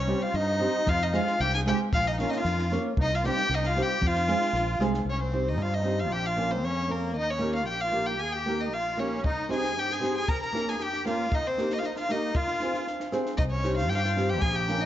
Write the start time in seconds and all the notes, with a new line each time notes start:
Already playing: C2 C#4 C#5
0.07 G3 C4 D#4 G4 C5
0.22 F4 F5
0.34 G2 D#4 D#5
0.59 G3 C4 D#4 G4 C5
0.86 F2 F4 F5, kick
1.02 D#4 D#5
1.12 G#3 C4 F4 G#4 C5 F5, snare
1.16 F4
1.27 snare
1.40 C2 G4 G5, snare
1.54 G#4 G#5, snare
1.66 G#3 C4 F4 G4 G#4 C5 G5, snare
1.92 A#1 F4 F5, kick
2.07 D#4 D#5
2.19 A#3 C#4 F4 A#4 C#5 F5, snare
2.28 D#4 D#5, snare
2.35 F4 F5
2.45 F2, snare
2.59 snare
2.71 A#3 C#4 F4 A#4 C#5, snare
2.97 C2 D#4, kick
3.02 D#5
3.13 F4 F5
3.24 G3 C4 D#4 G4 C5, snare
3.29 G5
3.37 snare
3.49 C2, snare
3.54 D#4 D#5
3.64 F4 F5, snare
3.75 G3 C4 D#4 G4 C5, snare
3.82 G4 G5
4.01 F2, kick
4.06 F4 F5
4.15 snare
4.28 G#3 C4 F4 G#4 C5, snare
4.41 snare
4.53 A#1, snare
4.79 C2 G#3 C4 F4 G#4 C5, snare
4.94 snare
5.05 C2
5.10 C#4 C#5
5.23 C4 C5
5.32 C4 D#4 G4 C5
5.49 D#4 D#5
5.58 G2
5.62 F4 F5
5.74 D#4 D#5
5.83 C4 D#4 G4 C5
6.00 F4 F5
6.10 A#1 G4 G5
6.26 F4 F5
6.36 A#3 C#4 F4 A#4
6.51 C4 C5
6.63 F2 C#4 C#5
6.88 A#3 C#4 F4 A#4
7.15 D#2 D#4 D#5
7.30 C#4 C#5
7.39 A#3 D#4 G4 A#4
7.55 F4 F5
7.67 A#1 G4 G5
7.81 F4 F5
7.92 A#3 D#4 G4 A#4
8.06 G4 G5
8.19 D#2 G#4 G#5
8.33 G4 G5
8.46 A#3 D#4 G4 A#4
8.61 D#4 D#5
8.72 A#1 F4 F5
8.97 A#3 C#4 D#4 G4 A#4 C#5
9.24 C2 D#4 D#5, kick
9.49 C4 D#4 G4 G#4 C5, snare
9.54 G#5
9.64 snare
9.77 G2 G4 G5, snare
9.90 G#4 G#5, snare
10.00 C4 D#4 G4 C5
10.04 snare
10.16 G#4 G#5
10.28 A#1 A#4 A#5, kick
10.42 A#4 A#5
10.53 A#3 C#4 F4 A#4, snare
10.68 G#4 G#5, snare
10.80 F2 G4 G5, snare
10.93 snare
11.05 A#3 C#4 F4 A#4 F5, snare
11.32 D#2 D#4 D#5, kick
11.45 C4 C5
11.57 A#3 D#4 G4 A#4, snare
11.70 D#4 D#5, snare
11.77 F4 F5
11.83 A#1 D#4 D#5, snare
11.95 F4 F5, snare
12.08 A#3 D#4 G4 A#4 D#5, snare
12.34 F2 F4 F5, kick
12.47 snare
12.60 C4 F4 G#4 C5, snare
12.74 snare
12.87 C#2, snare
13.00 snare
13.12 C4 F4 G#4 C5, snare
13.26 snare
13.37 C2 D#4 D#5, kick
13.51 C#4 C#5
13.63 C4 D#4 G4 C5, snare
13.77 F4 F5, snare
13.89 G2 G4 G5, snare
13.94 F4 G4 F5 G5
14.02 F4 F5, snare
14.17 C4 D#4 G4 C5, snare
14.27 G4 G5
14.39 A#1 G#4 G#5, kick
14.52 G4 G5
14.68 A#3 C#4 F4 A#4, snare
14.78 D#4 D#5